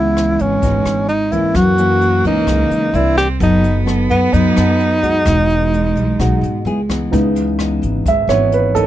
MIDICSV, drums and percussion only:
0, 0, Header, 1, 2, 480
1, 0, Start_track
1, 0, Key_signature, 4, "minor"
1, 0, Tempo, 464396
1, 1604, Time_signature, 4, 2, 24, 8
1, 9166, End_track
2, 0, Start_track
2, 0, Title_t, "Drums"
2, 174, Note_on_c, 9, 37, 55
2, 174, Note_on_c, 9, 42, 39
2, 277, Note_off_c, 9, 37, 0
2, 277, Note_off_c, 9, 42, 0
2, 406, Note_on_c, 9, 36, 22
2, 407, Note_on_c, 9, 42, 43
2, 509, Note_off_c, 9, 36, 0
2, 510, Note_off_c, 9, 42, 0
2, 643, Note_on_c, 9, 42, 53
2, 644, Note_on_c, 9, 36, 56
2, 747, Note_off_c, 9, 42, 0
2, 748, Note_off_c, 9, 36, 0
2, 884, Note_on_c, 9, 37, 56
2, 884, Note_on_c, 9, 42, 44
2, 988, Note_off_c, 9, 37, 0
2, 988, Note_off_c, 9, 42, 0
2, 1122, Note_on_c, 9, 42, 40
2, 1226, Note_off_c, 9, 42, 0
2, 1363, Note_on_c, 9, 36, 23
2, 1365, Note_on_c, 9, 42, 47
2, 1466, Note_off_c, 9, 36, 0
2, 1468, Note_off_c, 9, 42, 0
2, 1599, Note_on_c, 9, 37, 58
2, 1599, Note_on_c, 9, 42, 59
2, 1601, Note_on_c, 9, 36, 58
2, 1703, Note_off_c, 9, 37, 0
2, 1703, Note_off_c, 9, 42, 0
2, 1704, Note_off_c, 9, 36, 0
2, 1836, Note_on_c, 9, 42, 43
2, 1939, Note_off_c, 9, 42, 0
2, 2081, Note_on_c, 9, 42, 39
2, 2184, Note_off_c, 9, 42, 0
2, 2318, Note_on_c, 9, 36, 22
2, 2322, Note_on_c, 9, 42, 43
2, 2421, Note_off_c, 9, 36, 0
2, 2425, Note_off_c, 9, 42, 0
2, 2557, Note_on_c, 9, 37, 57
2, 2557, Note_on_c, 9, 42, 47
2, 2558, Note_on_c, 9, 36, 57
2, 2660, Note_off_c, 9, 37, 0
2, 2660, Note_off_c, 9, 42, 0
2, 2661, Note_off_c, 9, 36, 0
2, 2801, Note_on_c, 9, 42, 40
2, 2904, Note_off_c, 9, 42, 0
2, 3041, Note_on_c, 9, 42, 37
2, 3145, Note_off_c, 9, 42, 0
2, 3278, Note_on_c, 9, 36, 24
2, 3281, Note_on_c, 9, 37, 60
2, 3281, Note_on_c, 9, 42, 40
2, 3381, Note_off_c, 9, 36, 0
2, 3384, Note_off_c, 9, 37, 0
2, 3384, Note_off_c, 9, 42, 0
2, 3519, Note_on_c, 9, 36, 57
2, 3521, Note_on_c, 9, 42, 53
2, 3622, Note_off_c, 9, 36, 0
2, 3624, Note_off_c, 9, 42, 0
2, 3760, Note_on_c, 9, 42, 40
2, 3863, Note_off_c, 9, 42, 0
2, 4005, Note_on_c, 9, 37, 50
2, 4005, Note_on_c, 9, 42, 38
2, 4109, Note_off_c, 9, 37, 0
2, 4109, Note_off_c, 9, 42, 0
2, 4239, Note_on_c, 9, 36, 23
2, 4242, Note_on_c, 9, 42, 43
2, 4342, Note_off_c, 9, 36, 0
2, 4345, Note_off_c, 9, 42, 0
2, 4479, Note_on_c, 9, 36, 55
2, 4480, Note_on_c, 9, 42, 55
2, 4582, Note_off_c, 9, 36, 0
2, 4584, Note_off_c, 9, 42, 0
2, 4718, Note_on_c, 9, 37, 60
2, 4718, Note_on_c, 9, 42, 42
2, 4822, Note_off_c, 9, 37, 0
2, 4822, Note_off_c, 9, 42, 0
2, 4959, Note_on_c, 9, 42, 38
2, 5063, Note_off_c, 9, 42, 0
2, 5198, Note_on_c, 9, 36, 24
2, 5201, Note_on_c, 9, 42, 47
2, 5302, Note_off_c, 9, 36, 0
2, 5304, Note_off_c, 9, 42, 0
2, 5435, Note_on_c, 9, 37, 62
2, 5435, Note_on_c, 9, 42, 65
2, 5437, Note_on_c, 9, 36, 63
2, 5539, Note_off_c, 9, 37, 0
2, 5539, Note_off_c, 9, 42, 0
2, 5541, Note_off_c, 9, 36, 0
2, 5683, Note_on_c, 9, 42, 43
2, 5787, Note_off_c, 9, 42, 0
2, 5928, Note_on_c, 9, 42, 40
2, 6031, Note_off_c, 9, 42, 0
2, 6161, Note_on_c, 9, 36, 23
2, 6167, Note_on_c, 9, 42, 42
2, 6265, Note_off_c, 9, 36, 0
2, 6270, Note_off_c, 9, 42, 0
2, 6402, Note_on_c, 9, 36, 56
2, 6405, Note_on_c, 9, 37, 54
2, 6405, Note_on_c, 9, 42, 49
2, 6505, Note_off_c, 9, 36, 0
2, 6508, Note_off_c, 9, 37, 0
2, 6508, Note_off_c, 9, 42, 0
2, 6648, Note_on_c, 9, 42, 39
2, 6751, Note_off_c, 9, 42, 0
2, 6885, Note_on_c, 9, 42, 37
2, 6988, Note_off_c, 9, 42, 0
2, 7124, Note_on_c, 9, 36, 25
2, 7129, Note_on_c, 9, 37, 63
2, 7129, Note_on_c, 9, 42, 45
2, 7227, Note_off_c, 9, 36, 0
2, 7233, Note_off_c, 9, 37, 0
2, 7233, Note_off_c, 9, 42, 0
2, 7367, Note_on_c, 9, 36, 59
2, 7371, Note_on_c, 9, 42, 59
2, 7470, Note_off_c, 9, 36, 0
2, 7475, Note_off_c, 9, 42, 0
2, 7607, Note_on_c, 9, 42, 45
2, 7710, Note_off_c, 9, 42, 0
2, 7843, Note_on_c, 9, 37, 59
2, 7843, Note_on_c, 9, 42, 40
2, 7946, Note_off_c, 9, 37, 0
2, 7946, Note_off_c, 9, 42, 0
2, 8085, Note_on_c, 9, 36, 25
2, 8090, Note_on_c, 9, 42, 45
2, 8189, Note_off_c, 9, 36, 0
2, 8193, Note_off_c, 9, 42, 0
2, 8327, Note_on_c, 9, 36, 60
2, 8332, Note_on_c, 9, 42, 57
2, 8430, Note_off_c, 9, 36, 0
2, 8435, Note_off_c, 9, 42, 0
2, 8568, Note_on_c, 9, 37, 54
2, 8568, Note_on_c, 9, 42, 41
2, 8671, Note_off_c, 9, 37, 0
2, 8671, Note_off_c, 9, 42, 0
2, 8809, Note_on_c, 9, 42, 45
2, 8912, Note_off_c, 9, 42, 0
2, 9047, Note_on_c, 9, 36, 25
2, 9053, Note_on_c, 9, 42, 47
2, 9150, Note_off_c, 9, 36, 0
2, 9156, Note_off_c, 9, 42, 0
2, 9166, End_track
0, 0, End_of_file